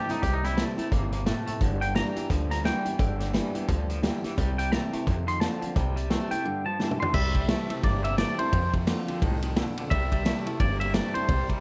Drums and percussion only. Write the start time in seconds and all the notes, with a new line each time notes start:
0.10 snare, closed hi-hat
0.23 kick, closed hi-hat
0.44 snare, closed hi-hat
0.57 snare, closed hi-hat
0.79 closed hi-hat
0.92 kick, closed hi-hat
1.12 closed hi-hat
1.26 snare, closed hi-hat
1.47 closed hi-hat
1.61 kick, closed hi-hat
1.82 closed hi-hat
1.96 snare, closed hi-hat
2.16 closed hi-hat
2.30 kick, snare, closed hi-hat
2.51 snare, closed hi-hat
2.65 snare, closed hi-hat
2.86 closed hi-hat
2.99 kick, closed hi-hat
3.20 snare, closed hi-hat
3.34 snare, closed hi-hat
3.55 closed hi-hat
3.69 kick, closed hi-hat
3.90 closed hi-hat
4.03 snare, closed hi-hat
4.24 snare, closed hi-hat
4.38 kick, closed hi-hat
4.59 closed hi-hat
4.72 snare, closed hi-hat
4.93 closed hi-hat
5.07 kick, closed hi-hat
5.28 closed hi-hat
5.41 snare, closed hi-hat
5.62 closed hi-hat
5.76 kick, closed hi-hat
5.97 closed hi-hat
6.10 snare, closed hi-hat
6.31 closed hi-hat
6.80 snare
6.91 mid tom
7.02 floor tom
7.14 kick, crash
7.35 kick, ride
7.49 snare, ride
7.70 ride
7.83 kick, snare, ride
8.04 ride
8.18 snare, ride
8.39 ride
8.53 kick, ride
8.74 kick, ride
8.87 snare, ride
9.08 ride
9.22 kick, ride
9.42 ride
9.56 snare, ride
9.77 ride
9.91 kick, ride
10.12 kick, ride
10.26 snare, ride
10.47 ride
10.60 kick, ride
10.81 ride
10.94 snare, ride
11.15 ride
11.29 kick, ride
11.50 kick, ride